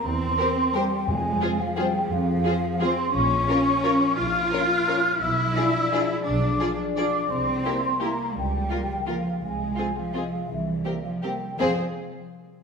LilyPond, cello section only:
\new Staff \with { instrumentName = "Cello section" } { \clef bass \time 3/4 \key f \minor \tempo 4 = 171 c'2 g4 | aes4. f8 g4 | f2 c'4 | des'2. |
f'2. | e'2. | d'4. r8 d'4 | c'2 bes4 |
g2 f4 | aes4. f4. | e4. f8 g4 | f8 r2 r8 | }